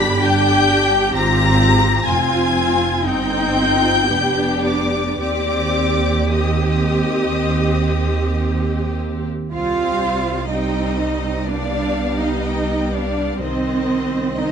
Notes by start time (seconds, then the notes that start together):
Already playing: G1 D4 G4 B5 B6
0.21 D4 G4 G5 G6
1.14 G#1 C4 F4 A#5 A#6
2.06 F1 C4 F4 G#5 G#6
2.54 F4
3.03 G1 C4 D#4 G5 G6
3.55 F4
4.08 F1 B3 D4 G4
4.64 D5 D6
5.19 D#2 C4 G4 D5 D6
6.33 C4 G4 D#5 D#6
9.52 C2 G3 C4 F4 C5 F5
10.50 G3 C4 D#4 D#5 G5
10.99 D#5
11.47 G3 B3 D4 D5 F5
12.19 D#4 D#5
12.44 G5
12.91 D4 D5 F5
13.40 C2 D#3 C4 C5 D#5
14.38 D#3 C4 D#4 C5 D#5